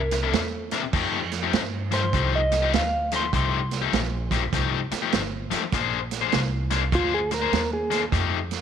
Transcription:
Already playing: C2 A#4
0.11 muted overdriven electric guitar stroke, snare, closed hi-hat
0.23 C3 A#3 D4 E4
0.29 A4
0.33 E2, snare, closed hi-hat
0.71 C3 A#3 D4 E4, snare, closed hi-hat
0.83 muted overdriven electric guitar stroke
0.93 F2 F3 A3 D#4 G4, kick, snare, crash
1.31 snare, closed hi-hat
1.43 F3 A3 D#4 G4
1.53 G2, snare, closed hi-hat
1.91 F3 A3 D#4 G4 C5, snare, closed hi-hat
2.03 muted overdriven electric guitar stroke
2.13 C2 F3 A3 D#4 G4, kick, closed hi-hat
2.35 D#5
2.52 muted overdriven electric guitar stroke, snare, closed hi-hat
2.62 F3 A3 D#4 G4
2.73 D2 F5, snare, closed hi-hat
3.11 F3 A3 D#4 G4, snare, closed hi-hat
3.16 C6
3.24 muted overdriven electric guitar stroke
3.33 C2 F3 A3 D#4 G4 C6, kick, closed hi-hat
3.71 snare, closed hi-hat
3.82 F3 A3 D#4 G4
3.92 A#1, snare, closed hi-hat
4.31 F3 A3 D#4 G4, kick, snare, closed hi-hat
4.43 muted overdriven electric guitar stroke
4.53 C2 F3 A3 D#4 G4, kick, snare, closed hi-hat
4.91 muted upright bass stroke, muted overdriven electric guitar stroke, snare, closed hi-hat
5.02 F3 A3 D#4 G4
5.12 G1, snare, closed hi-hat
5.51 F3 A3 D#4 G4, muted upright bass stroke, snare, closed hi-hat
5.62 muted overdriven electric guitar stroke
5.72 A#1 A#3 D4 G#4 C5, kick, snare, closed hi-hat
6.11 snare, closed hi-hat
6.21 A#3 D4 G#4 C5
6.32 C2, snare, closed hi-hat
6.70 A#3 D4 G#4 C5, snare, closed hi-hat
6.82 muted overdriven electric guitar stroke
6.92 D2 A#3 D4 F4 G#4 C5, kick, closed hi-hat
7.14 G#4
7.31 A#4, muted overdriven electric guitar stroke, snare, closed hi-hat
7.42 A#3 D4 G#4 C5
7.52 D#2, snare, closed hi-hat
7.73 G#4
7.91 A#3 D4 G#4 C5, snare, closed hi-hat
8.02 muted overdriven electric guitar stroke
8.12 F2 F3 A3 D#4 G4, kick, snare, closed hi-hat
8.51 snare, closed hi-hat

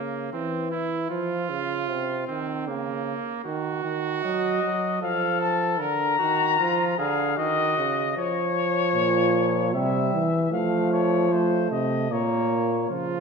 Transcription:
Already playing: C#3 A#3
0.33 E3 C4
0.71 E4
1.10 F3 F4
1.50 C#3
1.89 C3
2.27 D#3 C4
2.67 C#3 A#3
3.44 D#3 F#4
3.85 D#3
4.22 F#3 D#5
4.63 F#3
5.01 F3 A4 F5
5.41 A5
5.80 D3 A#4 A#5
6.19 D#3 F#4
6.58 F3 F4
6.98 D3 G#4 F5
7.37 D#3 F#4 D#5
7.78 C#3
8.17 F3 C#5
8.95 A#2
9.73 C3 G3 E5
10.13 E3
10.52 F3 A3 F5
10.92 C#5
11.31 A3 C5
11.71 C3 D#5
12.10 A#2 A#3 C#5
12.89 C#3 F3 F4

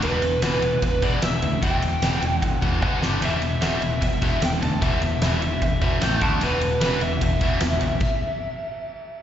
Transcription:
0.02 E1 E2 B2 E3 B4, ride
0.22 E2 B2, ride
0.42 E1 E2 B2 E3 B4, snare, ride
0.61 E1 E2 B2 E3, ride
0.82 E1 E2 B2 B4, kick, ride
1.02 E1 E2 B2 E3 D5, kick, ride
1.22 E1 E2 B2 E3 E5, snare, ride
1.42 D2 E2 B2, ride
1.62 E1 E2 B2 E3 G5, kick, ride
1.82 E2 B2, ride
2.02 E1 E2 B2 E3, snare, ride
2.21 E1 E2 B2 E3, ride
2.39 E1 E2 F#5, kick, ride
2.43 B2
2.61 E1 E2 B2 E3, kick, ride
2.81 B1 B2 F#3 B3, kick
3.01 G1 G2 D3 G3, snare
3.21 E1 E2 B2 E3 E5, ride
3.42 E2 B2, ride
3.61 E1 E2 B2 E3 E5, snare, ride
3.81 E1 E2 B2 E3, ride
4.01 E1 E2 B2 E5, kick, ride
4.21 E1 E2 B2 E3, kick, ride
4.41 E1 E2 B2 E3 G5, snare, ride
4.61 D2 E2 B2 A5, ride
4.81 E1 E2 B2 E3 E5, kick, ride
5.02 E2 B2, ride
5.22 E1 E2 B2 E3 E5, snare, ride
5.41 E1 E2 B2 E3, ride
5.62 E1 E2 B2 E5, kick, ride
5.81 E1 E2 B2 E3 E5, kick, ride
6.01 A1 A2 E3 A3 G5, snare, ride
6.21 D2 D3 A3 D4 A5, kick, ride
6.41 E1 E2 B2 E3 B4, ride
6.61 E2 B2, ride
6.81 E1 E2 B2 E3 B4, snare, ride
7.00 E1 E2 B2 E3 E5, ride
7.21 E1 E2 B2, kick, ride
7.41 E1 E2 B2 E3, kick, ride
7.60 E1 E2 B2 E3, snare, ride
7.81 A#1 E2 B2, ride
8.00 kick, crash

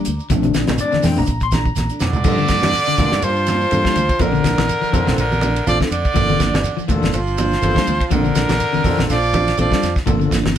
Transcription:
Already playing: G3 A#5 D6
0.05 D2, closed hi-hat, shekere
0.19 shekere
0.30 A#1 F3 A3 C4 D4, kick, closed hi-hat, low conga, shekere
0.43 D3, closed hi-hat, high conga, shekere
0.54 A#1 F3 A3 D4, snare, closed hi-hat, shekere
0.67 A#1 E3, snare, closed hi-hat, high conga, shekere
0.78 D5, closed hi-hat, shekere
0.91 D3, muted fingered electric bass stroke, snare, high conga, shekere
1.02 F2 E3 A3 C4 D4 G5, snare, open hi-hat, high conga, low conga, shekere
1.16 A#1 A3 D4 A#5, low conga, shekere
1.26 A#1, kick, closed hi-hat, shekere
1.40 C6, kick, closed hi-hat, shekere
1.51 F3 A3 D4 A#5, kick, snare, closed hi-hat, high conga, shekere
1.65 kick, shekere
1.75 A#1, snare, closed hi-hat, high conga, shekere
1.89 A3 D4, closed hi-hat, shekere
2.00 F2 D3 D5, snare, low conga, shekere
2.13 floor tom, low conga, shekere
2.24 G2 F3 A#3 D4 F4 A4, kick, crash, low conga, shekere
2.38 D3, shekere
2.48 G2 F3 A#3 D4, kick, snare, ride bell, shekere
2.62 G2 E3, snare, high conga, shekere
2.73 ride bell, shekere
2.87 D3, muted fingered electric bass stroke, shekere
2.98 D2 E3 A#3 D4 F4 G4, kick, snare, ride bell, high conga, low conga, shekere
3.11 G2 A#3 D4, snare, shekere
3.22 G2 F3 C5, ride bell, shekere
3.36 shekere
3.47 A#3 D4, snare, ride bell, high conga, shekere
3.61 shekere
3.71 G2 A#3 D4 F4 A4, ride bell, high conga, shekere
3.84 G3 A#3 D4, kick, snare, shekere
3.96 D2, ride bell, high conga, shekere
4.09 kick, ride bell, shekere
4.19 A#1 D3 F3 A3 C4 D4 F4 A4 A#4, kick, ride bell, low conga, shekere
4.32 D3, shekere
4.44 A#1 F3 A3 D4, kick, snare, ride bell, shekere
4.58 A#1 E3, snare, ride bell, high conga, shekere
4.69 ride bell, shekere
4.81 F3, muted fingered electric bass stroke, shekere
4.93 F2 E3 C4 D4 F4 A4, kick, ride bell, high conga, low conga, shekere
5.06 A#1 A3 D4, muted clean electric guitar stroke, snare, low conga, shekere
5.18 A#1 D3 A#4, ride bell, shekere
5.32 high conga, shekere
5.41 F3 A3 D4, ride bell, high conga, shekere
5.56 ride bell, shekere
5.67 A#1 F3 C4 D4 F4 A4 D5, ride bell, high conga, shekere
5.80 A3 D4, kick, snare, shekere
5.91 F2 D3 D5, ride bell, shekere
6.05 kick, shekere
6.14 G1 F3 A#3 D4 F4 A4, kick, ride bell, low conga, shekere
6.29 D3, high conga, shekere
6.39 G1 F3 A#3 D4, kick, snare, ride bell, shekere
6.53 G1, snare, high conga, shekere
6.64 ride bell, shekere
6.77 F3, muted fingered electric bass stroke, shekere
6.88 D2 E3 A#3 D4 F4 A4, kick, ride bell, high conga, low conga, shekere
7.02 G1 F3 A#3 D4, snare, low conga, shekere
7.13 G1 F3 C5, ride bell, shekere
7.27 shekere
7.37 F3 A#3 D4, ride bell, high conga, shekere
7.51 snare, shekere
7.61 G1 A#3 D4 F4 A4, ride bell, high conga, shekere
7.75 G3 A#3 D4, kick, snare, shekere
7.87 D2, ride bell, high conga, shekere
8.01 kick, ride bell, shekere
8.11 A#1 D3 F3 A3 C4 D4 F4 A4 A#4, kick, ride bell, low conga, shekere
8.24 D3, shekere
8.35 A#1 F3 A3 D4, snare, ride bell, shekere
8.49 A#1 E3, snare, ride bell, high conga, shekere
8.60 ride bell, shekere
8.73 D3, muted fingered electric bass stroke, high conga, shekere
8.83 F2 E3 C4 D4 F4 A4, kick, open hi-hat, high conga, low conga, shekere
8.97 A#1 F3 A3 D4, snare, low conga, shekere
9.10 A#1 F3 D5, snare, ride bell, shekere
9.23 shekere
9.33 F3 A3 D4, kick, ride bell, high conga, shekere
9.47 snare, ride bell, shekere
9.57 A#1 F3 C4 D4 F4 A4 D5, ride bell, high conga, shekere
9.71 G3 A3 D4, kick, snare, shekere
9.83 F2, snare, ride bell, shekere
9.96 kick, snare, shekere
10.06 G1 F3 A#3 D4 F4 A4, kick, ride bell, low conga, shekere
10.20 D3, shekere
10.30 G1 F3 A#3 D4, kick, snare, ride bell, shekere
10.44 G1 E3, snare, high conga, shekere

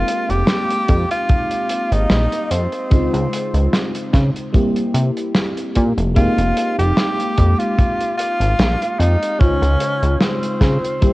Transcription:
Already playing: G#3 A#3 C4 D#4 F4 G4
0.08 closed hi-hat
0.29 F1 G4, closed hi-hat
0.47 snare, closed hi-hat
0.70 closed hi-hat
0.88 F2, kick, closed hi-hat
1.11 F4, closed hi-hat
1.29 kick, closed hi-hat
1.51 closed hi-hat
1.69 closed hi-hat
1.92 G#1 D#4, closed hi-hat
2.10 A#1, snare, closed hi-hat
2.32 closed hi-hat
2.51 F2 C4, closed hi-hat
2.72 closed hi-hat
2.90 C#2 C#3 G#3 C4 D#4 F4, kick, closed hi-hat
3.14 C#2, closed hi-hat
3.33 closed hi-hat
3.54 C#2, closed hi-hat
3.73 snare, closed hi-hat
3.95 closed hi-hat
4.13 C#3, kick, snare, closed hi-hat
4.36 closed hi-hat
4.52 G3 A#3 C4 E4 G4, kick, closed hi-hat
4.76 closed hi-hat
4.94 C3, closed hi-hat
5.17 closed hi-hat
5.35 snare, closed hi-hat
5.57 closed hi-hat
5.75 A#2, kick, closed hi-hat
5.97 F1, closed hi-hat
6.15 G#3 A#3 C4 D#4 F4 G4, kick, closed hi-hat
6.38 F1, closed hi-hat
6.57 closed hi-hat
6.78 F1 G4, closed hi-hat
6.97 snare, closed hi-hat
7.20 closed hi-hat
7.38 F2, kick, closed hi-hat
7.59 F4, closed hi-hat
7.78 kick, closed hi-hat
8.00 closed hi-hat
8.17 F4, closed hi-hat
8.40 G#1, closed hi-hat
8.59 A#1, snare, closed hi-hat
8.82 closed hi-hat
8.99 F2 D#4, closed hi-hat
9.22 closed hi-hat
9.39 C#2 C#3 G#3 C#4 D#4 F4 C5, kick, closed hi-hat
9.62 C#2, closed hi-hat
9.80 closed hi-hat
10.02 C#2, closed hi-hat
10.21 C4, snare, closed hi-hat
10.43 closed hi-hat
10.61 C#3, kick, snare, closed hi-hat
10.85 closed hi-hat
11.01 G3 A#3 C4 E4 G4, kick, closed hi-hat

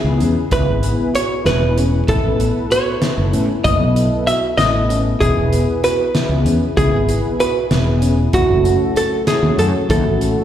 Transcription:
Already playing: B3 E4 G#4 B4
0.04 C#2
0.20 E2 C#4, closed hi-hat
0.51 C#2 B3 E4 G#4 B4, kick, closed hi-hat
0.67 G#1
0.83 closed hi-hat
1.14 F#4 C#5, closed hi-hat
1.44 E1 B3 E4 G#4 B4, snare, closed hi-hat
1.77 C#4, closed hi-hat
2.07 A1 B3 E4 A4 B4, kick, closed hi-hat
2.23 A1
2.40 closed hi-hat
2.71 F#4 C#5, closed hi-hat
3.01 B3 E4 A4 B4, snare, closed hi-hat
3.18 F#1
3.33 A2 C#4, closed hi-hat
3.64 F#1 B3 E4 A4 B4 D#5, kick, closed hi-hat
3.80 B1
3.96 closed hi-hat
4.27 F#4 E5, closed hi-hat
4.57 A1 B3 E4 A4 B4 D#5, snare, closed hi-hat
4.90 C#4, closed hi-hat
5.20 E1 B3 E4 G#4 B4, kick, closed hi-hat
5.35 E1
5.53 closed hi-hat
5.84 F#4 B4, closed hi-hat
6.14 B3 E4 G#4 B4, snare, closed hi-hat
6.29 C#2
6.45 E2 C#4, closed hi-hat
6.76 C#2 B3 E4 G#4 B4, kick, closed hi-hat
6.92 G#1
7.09 closed hi-hat
7.40 F#4 B4, closed hi-hat
7.70 E1 B3 E4 G#4 B4, snare, closed hi-hat
8.02 C#4, closed hi-hat
8.32 F#1 A3 C#4 E4 F#4 A4, kick, closed hi-hat
8.49 F#1
8.65 closed hi-hat
8.96 F#4 A4, closed hi-hat
9.26 A3 C#4 E4 F#4 G#4 C#5, snare, closed hi-hat
9.43 D#2
9.58 F#2 C#4 A4, closed hi-hat
9.89 D#2 A3 C#4 E4 F#4 A4, kick, closed hi-hat
10.04 A1
10.21 closed hi-hat

